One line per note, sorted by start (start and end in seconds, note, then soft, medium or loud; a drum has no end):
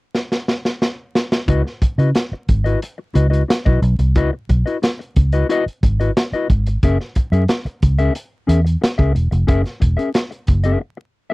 0.15 snare medium
0.32 snare medium
0.48 snare medium
0.65 snare medium
0.82 snare medium
1.15 snare medium
1.32 snare loud
1.48 1.61 C#2 medium
1.48 1.61 E4 medium
1.48 1.62 F#4 medium
1.48 1.62 B4 medium
1.48 1.62 D#5 medium
1.48 kick loud
1.48 closed hi-hat medium
1.64 muted clean electric guitar stroke soft
1.64 snare soft
1.82 muted clean electric guitar stroke soft
1.82 muted fingered electric bass stroke soft
1.82 kick medium
1.82 closed hi-hat medium
1.98 2.11 C#3 medium
1.98 2.10 E4 soft
1.98 2.09 F#4 soft
1.98 2.09 B4 medium
1.98 2.09 D#5 medium
1.98 closed hi-hat soft
2.15 muted clean electric guitar stroke soft
2.15 snare medium
2.15 closed hi-hat medium
2.32 muted fingered electric bass stroke soft
2.32 muted clean electric guitar stroke soft
2.49 2.75 G#1 medium
2.49 kick medium
2.49 closed hi-hat medium
2.64 2.79 E4 medium
2.64 2.79 F#4 medium
2.64 2.79 B4 medium
2.64 2.78 D#5 medium
2.64 closed hi-hat soft
2.82 muted clean electric guitar stroke soft
2.82 closed hi-hat medium
2.98 muted clean electric guitar stroke soft
3.14 3.42 C#2 medium
3.14 3.25 E4 soft
3.14 3.26 F#4 medium
3.14 3.26 B4 medium
3.14 3.26 D#5 medium
3.14 closed hi-hat medium
3.30 3.42 E4 soft
3.30 3.42 F#4 soft
3.30 3.42 B4 medium
3.30 3.42 D#5 medium
3.30 closed hi-hat soft
3.48 muted clean electric guitar stroke soft
3.48 snare loud
3.48 closed hi-hat medium
3.65 3.79 B1 medium
3.65 3.80 E4 medium
3.65 3.80 F#4 medium
3.65 3.79 B4 medium
3.65 3.79 D#5 medium
3.65 kick medium
3.82 3.95 B1 medium
3.82 muted clean electric guitar stroke soft
3.82 closed hi-hat medium
3.99 4.16 C2 medium
3.99 muted clean electric guitar stroke soft
3.99 closed hi-hat medium
4.15 4.29 C#2 medium
4.15 4.29 E4 medium
4.15 4.29 F#4 medium
4.15 4.30 B4 medium
4.15 4.30 D#5 loud
4.15 kick loud
4.15 closed hi-hat medium
4.33 muted clean electric guitar stroke soft
4.49 4.62 B1 medium
4.49 muted clean electric guitar stroke soft
4.49 kick medium
4.49 closed hi-hat medium
4.66 4.77 E4 medium
4.66 4.77 F#4 soft
4.66 4.76 B4 medium
4.66 4.76 D#5 medium
4.66 closed hi-hat soft
4.82 muted clean electric guitar stroke soft
4.82 snare medium
4.82 closed hi-hat medium
4.99 muted clean electric guitar stroke soft
4.99 closed hi-hat soft
5.16 5.43 C#2 medium
5.16 kick medium
5.16 closed hi-hat medium
5.32 5.47 E4 medium
5.32 5.47 F#4 medium
5.32 5.46 B4 medium
5.32 5.46 D#5 medium
5.32 closed hi-hat medium
5.49 5.63 E4 medium
5.49 5.63 F#4 medium
5.49 5.64 B4 medium
5.49 5.64 D#5 loud
5.49 closed hi-hat medium
5.66 muted fingered electric bass stroke soft
5.66 closed hi-hat soft
5.83 6.09 G#1 medium
5.83 muted clean electric guitar stroke soft
5.83 kick medium
5.83 closed hi-hat medium
6.00 6.11 E4 soft
6.00 6.10 F#4 medium
6.00 6.10 B4 medium
6.00 6.10 D#5 medium
6.00 closed hi-hat soft
6.17 muted clean electric guitar stroke soft
6.17 snare loud
6.17 closed hi-hat medium
6.32 6.47 E4 medium
6.32 6.47 F#4 medium
6.32 6.47 B4 medium
6.32 6.46 D#5 medium
6.32 muted fingered electric bass stroke soft
6.32 closed hi-hat soft
6.50 6.76 G#1 medium
6.50 muted clean electric guitar stroke soft
6.50 kick medium
6.50 closed hi-hat medium
6.66 muted clean electric guitar stroke soft
6.66 closed hi-hat medium
6.83 6.96 F#1 loud
6.83 6.97 C#4 medium
6.83 6.97 G#4 medium
6.83 6.97 A#4 medium
6.83 6.97 E5 medium
6.83 kick loud
6.83 closed hi-hat medium
7.00 muted clean electric guitar stroke soft
7.00 snare soft
7.15 muted clean electric guitar stroke soft
7.15 muted fingered electric bass stroke soft
7.15 kick medium
7.15 closed hi-hat medium
7.32 7.45 F#2 medium
7.32 7.44 C#4 soft
7.32 7.43 G#4 medium
7.32 7.43 A#4 medium
7.32 7.43 E5 medium
7.32 closed hi-hat soft
7.48 muted clean electric guitar stroke soft
7.48 snare medium
7.48 closed hi-hat medium
7.65 muted fingered electric bass stroke soft
7.65 muted clean electric guitar stroke soft
7.65 closed hi-hat soft
7.82 8.09 C#2 medium
7.82 kick medium
7.82 closed hi-hat medium
7.99 8.13 C#4 medium
7.99 8.13 G#4 medium
7.99 8.13 A#4 medium
7.99 8.12 E5 medium
7.99 closed hi-hat soft
8.15 muted clean electric guitar stroke soft
8.15 closed hi-hat medium
8.47 8.75 E2 medium
8.47 8.59 C#4 medium
8.47 8.59 G#4 medium
8.47 8.59 A#4 medium
8.47 8.60 E5 medium
8.47 closed hi-hat medium
8.65 muted clean electric guitar stroke soft
8.65 closed hi-hat soft
8.81 muted clean electric guitar stroke soft
8.81 snare loud
8.81 closed hi-hat medium
8.98 9.12 C#2 medium
8.98 9.13 C#4 medium
8.98 9.12 G#4 medium
8.98 9.12 A#4 medium
8.98 9.12 E5 medium
8.98 kick medium
8.98 closed hi-hat soft
9.15 9.29 E1 medium
9.15 muted clean electric guitar stroke soft
9.15 closed hi-hat medium
9.31 9.45 F1 medium
9.31 muted clean electric guitar stroke soft
9.31 closed hi-hat medium
9.47 9.62 F#1 loud
9.47 9.62 C#4 medium
9.47 9.62 G#4 medium
9.47 9.62 A#4 medium
9.47 9.63 E5 medium
9.47 kick loud
9.47 closed hi-hat medium
9.64 muted clean electric guitar stroke soft
9.64 snare soft
9.64 closed hi-hat soft
9.80 9.95 E1 medium
9.80 muted clean electric guitar stroke soft
9.80 kick medium
9.80 closed hi-hat medium
9.97 10.09 C#4 soft
9.97 10.09 G#4 soft
9.97 10.09 A#4 medium
9.97 10.08 E5 medium
9.97 closed hi-hat soft
10.14 muted clean electric guitar stroke soft
10.14 snare medium
10.14 closed hi-hat medium
10.31 muted clean electric guitar stroke soft
10.31 closed hi-hat soft
10.47 10.75 F#1 medium
10.47 kick medium
10.47 closed hi-hat medium
10.64 10.79 C#4 medium
10.64 10.80 G#4 medium
10.64 10.80 A#4 medium
10.64 10.80 E5 medium
10.64 closed hi-hat medium
10.80 muted clean electric guitar stroke soft
10.97 muted clean electric guitar stroke soft
11.30 11.33 E5 medium